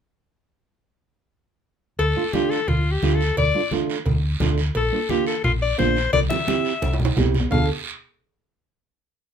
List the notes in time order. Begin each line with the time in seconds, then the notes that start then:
1.99 D2 A4, cowbell, high conga, long guiro
2.16 A3 D4 F4
2.33 A3 D4 F4 G4, high conga, short guiro
2.50 A4, short guiro
2.68 D2 F4, cowbell, high conga, low conga, long guiro
2.91 G4
3.02 D2 A3 D4 F4, high conga, short guiro
3.15 A4
3.21 short guiro
3.37 D2 D5, cowbell, high conga, low conga, long guiro
3.54 A3 D4 F4
3.71 A3 D4 F4, high conga, short guiro
3.90 short guiro
4.06 D2, cowbell, high conga, low conga, long guiro
4.40 D2 A3 D4 F4, high conga, low conga, short guiro
4.58 short guiro
4.75 A#1 A4, cowbell, high conga, long guiro
4.92 A#3 D4 F4
5.09 A#3 D4 F4 G4, high conga, short guiro
5.26 A4, short guiro
5.44 A#1 F4, cowbell, high conga, low conga, long guiro
5.62 D5
5.78 A#1 A#3 D4 F4 C5, high conga, low timbale, short guiro
5.96 short guiro
6.12 C2 D5, cowbell, high conga, long guiro
6.29 C4 E4 G4 E5, high conga
6.47 C4 E4 G4, high conga, short guiro
6.65 short guiro
6.82 C2, cowbell, low conga, high timbale, long guiro
6.94 high timbale
7.00 low conga
7.05 high timbale
7.17 C2 C4 E4 G4, low conga, low timbale, short guiro
7.34 low conga, short guiro
7.40 low timbale
7.51 D2 D4 F4 A4 F5, low conga, low timbale, long guiro